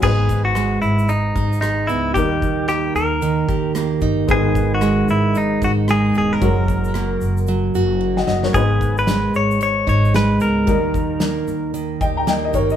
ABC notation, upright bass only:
X:1
M:4/4
L:1/8
Q:"Swing 16ths" 1/4=113
K:G#m
V:1 name="Upright bass" clef=bass
G,,,3 G,,,2 G,,,2 C,, | D,,3 D,,2 D,,2 =G,,, | G,,,3 G,,,2 G,,,2 E,,, | F,,,3 F,,,2 F,,,2 F,,, |
G,,,3 G,,,2 G,,,2 C,, | D,,3 D,,2 D,,2 =G,,, |]